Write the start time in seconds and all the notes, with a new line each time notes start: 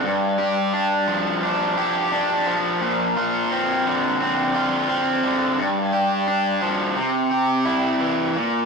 0.04 G2
0.38 G4
0.73 D4
1.08 F3
1.43 D4
1.77 G4
2.12 D4
2.46 F3
2.81 A#2
3.17 F4
3.51 C4
3.86 D3
4.20 C4
4.55 F4
4.89 C4
5.23 D3
5.58 G2
5.93 G4
6.27 D4
6.61 F3
6.96 C3
7.31 G4
7.65 E4
8.00 E3
8.35 A#2